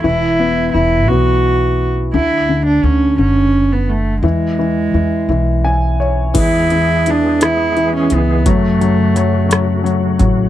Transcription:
<<
  \new Staff \with { instrumentName = "Cello" } { \time 6/8 \key e \mixolydian \tempo 4. = 57 e'4 e'8 fis'4 r8 | e'8. d'16 cis'8 cis'8. b16 a8 | gis2 r4 | e'4 d'8 e'8. cis'16 b8 |
a2 r4 | }
  \new Staff \with { instrumentName = "Tonewheel organ" } { \clef bass \time 6/8 \key e \mixolydian r2. | r2. | r2. | <e gis b gis'>2. |
<cis fis a fis'>2. | }
  \new Staff \with { instrumentName = "Upright piano" } { \time 6/8 \key e \mixolydian r2. | r2. | r2 gis''8 cis''8 | r2. |
r2. | }
  \new Staff \with { instrumentName = "Upright piano" } { \clef bass \time 6/8 \key e \mixolydian e8 b8 e8 b4. | d8 d8 d8 d4. | e8 e8 e8 e4. | e8 e8 e8 e8 e8 e8 |
fis8 fis8 fis8 fis8 fis8 fis8 | }
  \new Staff \with { instrumentName = "Upright bass" } { \clef bass \time 6/8 \key e \mixolydian e,,4 e,,8 b,,4. | d,4 d,8 fis,,4. | e,4 e,8 b,,4. | e,2~ e,8 cis,8 |
fis,2~ fis,8 a,,8 | }
  \new DrumStaff \with { instrumentName = "Drums" } \drummode { \time 6/8 r4. r4. | r4. r4. | r4. r4. | <cymc hh bd>8 hh8 hh8 <hh ss>8 hh8 hh8 |
<hh bd>8 hh8 <hh ss>8 <hh ss>8 hh8 <hh bd>8 | }
>>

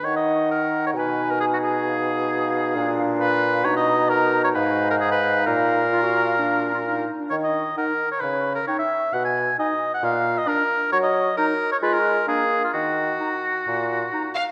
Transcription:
<<
  \new Staff \with { instrumentName = "Flute" } { \time 4/4 \key ees \minor \tempo 4 = 132 ges''2 aes''2 | f''1 | ais''2 f''2~ | f''2.~ f''8 r8 |
r4 ges''4 r4 g''4 | r4 aes''4 r4 bes''4 | r4 bes''4 ces'''4 bes''4 | r4 bes''4 r4 bes''4 | }
  \new Staff \with { instrumentName = "Violin section" } { \time 4/4 \key ees \minor r1 | r1 | r1 | r1 |
r1 | r1 | r1 | r2. r8 f''8 | }
  \new Staff \with { instrumentName = "Oboe" } { \time 4/4 \key ees \minor des''16 ees''8. bes'8. des''16 ces''8. bes'16 aes'16 ges'16 aes'8~ | aes'2~ aes'8 r8 ces''4 | des''16 dis''8. ais'8. des''16 ces''8. bes'16 aes'16 ces''8. | bes'2.~ bes'8 r8 |
des''16 ees''8. bes'8. des''16 ces''8. bes'16 des''16 fes''8. | ges''16 aes''8. ees''8. ges''16 f''8. ees''16 bes'4 | des''16 ees''8. bes'8. des''16 ces''16 bes'8. aes'8. f'16 | ges'2.~ ges'8 r8 | }
  \new Staff \with { instrumentName = "Clarinet" } { \time 4/4 \key ees \minor ees'1~ | ees'2 d'2 | dis'1~ | dis'4 f'16 ges'8. d'8. f'16 ees'8. d'16 |
r4 ees'4 r4 ees'4 | r4 ees'4 r4 d'4 | r4 ees'4 f'4 d'4 | r4 ees'4 r4 ees'4 | }
  \new Staff \with { instrumentName = "Bassoon" } { \clef bass \time 4/4 \key ees \minor ees2 ces2~ | ces2 bes,2 | b,2 aes,2 | bes,2.~ bes,8 r8 |
ees4 r4 des4 r4 | ces4 r4 bes,4 r4 | ges4 r4 aes4 bes4 | ees4 r4 bes,4 r4 | }
>>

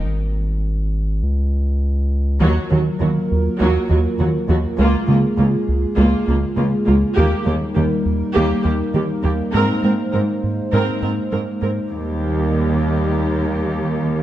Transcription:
<<
  \new Staff \with { instrumentName = "Viola section" } { \time 4/4 \key des \major \tempo 4 = 101 r1 | <ges ges'>8 <ges ges'>8 <ges ges'>8 r8 <ges ges'>8 <ges ges'>8 <ges ges'>8 <ges ges'>8 | <bes f'>8 <bes f'>8 <bes f'>8 r8 <bes f'>8 <bes f'>8 <bes f'>8 <bes f'>8 | <bes g'>8 <bes g'>8 <bes g'>8 r8 <bes g'>8 <bes g'>8 <bes g'>8 <bes g'>8 |
<c' bes'>8 <c' bes'>8 <c' bes'>8 r8 <c' bes'>8 <c' bes'>8 <c' bes'>8 <c' bes'>8 | <bes g'>1 | }
  \new Staff \with { instrumentName = "Analog synth pad" } { \time 4/4 \key des \major << { r1 | <ges bes'>1 | <aes aes'>1 | <g bes'>1 |
<aes c''>1 | <g bes'>1 | } \\ { r1 | <bes f'>1~ | <bes f'>1 | <bes ees'>1~ |
<bes ees'>1 | <bes ees'>1 | } >> }
  \new Staff \with { instrumentName = "Analog synth bass" } { \clef bass \time 4/4 \key des \major r1 | ees,8 ees8 ees8 ees,8 ees,8 ees,8 ees8 ees,8 | des,8 des8 des8 des,8 des,8 des,8 des8 des,8 | ees,8 ees8 ees8 ees,8 ees,8 ees,8 ees8 ees,8 |
aes,8 aes8 aes8 aes,8 aes,8 aes,8 aes8 aes,8 | r1 | }
  \new Staff \with { instrumentName = "Cello section" } { \clef bass \time 4/4 \key des \major r1 | ees,8 ees,8 ees,8 r8 ees,8 ees,8 ees,8 ees,8 | des,8 des,8 des,8 r8 des,8 des,8 des,8 des,8 | ees,8 ees,8 ees,8 r8 ees,8 ees,8 ees,8 ees,8 |
aes,8 aes,8 aes,8 r8 aes,8 aes,8 aes,8 aes,8 | ees,1 | }
  \new Staff \with { instrumentName = "Sub bass" } { \clef bass \time 4/4 \key des \major aes,,2 des,2 | r1 | r1 | r1 |
r1 | r1 | }
>>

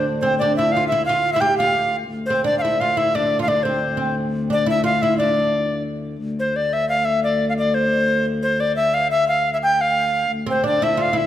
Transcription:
<<
  \new Staff \with { instrumentName = "Recorder" } { \time 6/8 \key d \minor \tempo 4. = 117 r8 c''8 d''8 e''8 f''8 e''8 | f''8. e''16 g''8 f''4. | r8 c''8 d''16. f''32 e''8 f''8 e''8 | d''8. f''16 d''8 c''4. |
r4 d''8 e''8 f''8 e''8 | d''2 r4 | r8 c''8 d''8 e''8 f''8 e''8 | d''8. f''16 d''8 c''4. |
r8 c''8 d''8 e''8 f''8 e''8 | f''8. e''16 g''8 f''4. | r8 c''8 d''8 e''8 f''8 e''8 | }
  \new Staff \with { instrumentName = "Oud" } { \time 6/8 \key d \minor r8 c'8 d'8 e'8 f'8 e'8 | f'8. e'16 g'8 f'4. | r8 c'8 d'8 e'8 f'8 e'8 | d'8. f'16 d'8 c'4 c'8 |
r4 d'8 e'8 f'8 e'8 | d'2 r4 | r2. | r2. |
r2. | r2. | r8 c'8 d'8 e'8 f'8 e'8 | }
  \new Staff \with { instrumentName = "Viola da gamba" } { \clef bass \time 6/8 \key d \minor d,2.~ | d,2. | d,2.~ | d,2.~ |
d,2.~ | d,2. | d,2.~ | d,2.~ |
d,2.~ | d,2. | d,2. | }
>>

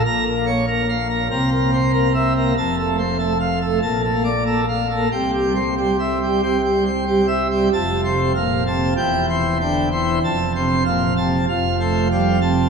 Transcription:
<<
  \new Staff \with { instrumentName = "Pipe organ" } { \time 4/4 \key f \major \tempo 4 = 95 \tuplet 3/2 { r8 bes'8 des''8 bes'8 f''8 bes'8 r8 bes'8 c''8 bes'8 e''8 bes'8 } | \tuplet 3/2 { r8 a'8 c''8 a'8 f''8 a'8 r8 a'8 d''8 a'8 f''8 a'8 } | \tuplet 3/2 { r8 g'8 c''8 g'8 e''8 g'8 g''8 g'8 c''8 g'8 e''8 g'8 } | r8 c''8 f''8 a''8 r8 c''8 g''8 c''8 |
r8 c''8 f''8 a''8 f''8 c''8 f''8 a''8 | }
  \new Staff \with { instrumentName = "Pipe organ" } { \clef bass \time 4/4 \key f \major << { <bes, bes''>8 bes16 r16 bes16 r8 bes16 <c bes''>8 bes16 r16 bes16 r8 bes16 | <f, a''>8 a16 r16 a16 r8 a16 <bes, a''>8 bes16 r16 bes16 r8 bes16 | <c g''>8 g16 r16 g16 r8 g16 c'16 r16 g16 r16 g16 r8 g16 | <f, a''>8 c8 bes,8 c8 <e, g''>8 e8 d8 e8 |
<f, a''>8 c8 bes,8 c8 f,8 a8 g8 c8 | } \\ { bes,,2 c,2 | f,,2 bes,,2 | c,1 | f,,2 e,,2 |
f,,2 f,,2 | } >> }
>>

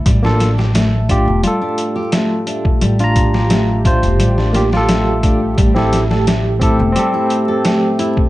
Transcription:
<<
  \new Staff \with { instrumentName = "Tine electric piano" } { \time 4/4 \key g \dorian \tempo 4 = 87 r16 <bes f' a'>8 r8. <f' g'>8 <f' a'>2~ | <f' a'>16 <f' bes''>4~ <f' bes''>16 <f' c''>4 <bes f' g'>16 <f' a'>4~ <f' a'>16 | r16 <c' g' a'>8 r8. <c' g' a'>8 <c' g' a'>2 | }
  \new Staff \with { instrumentName = "Analog synth pad" } { \time 4/4 \key g \dorian <a g'>1~ | <a g'>1~ | <a g'>1 | }
  \new Staff \with { instrumentName = "Nylon-string guitar" } { \time 4/4 \key g \dorian g16 d'8 g'16 a8 d'16 r16 g16 d'8 g'16 a8 d'16 r16 | g16 d'8 g'16 a8 d'16 r16 g16 d'8 g'16 a8 d'16 r16 | g16 e'8 a'16 a8 e'16 r16 g16 e'8 a'16 a8 e'16 r16 | }
  \new Staff \with { instrumentName = "Upright bass" } { \clef bass \time 4/4 \key g \dorian a,,4.~ a,,16 e,,16 r2 | a,,4.~ a,,16 e,,16 a,,2 | a,,4.~ a,,16 e,,16 r2 | }
  \new DrumStaff \with { instrumentName = "Drums" } \drummode { \time 4/4 <hh bd>16 sn16 <hh sn>16 sn16 <hh sn>8 <hh bd>8 hh8 hh8 <hh sn>8 hh16 bd16 | hh16 hh16 <hh bd>16 sn16 <hh sn>8 <hh bd>16 hh16 hh16 sn16 <hh sn>16 sn16 <hh sn>8 <hh bd>8 | <hh bd>16 sn16 <hh sn>16 sn16 <hh sn>8 <hh bd>8 hh8 hh8 <hh sn>8 hh16 bd16 | }
>>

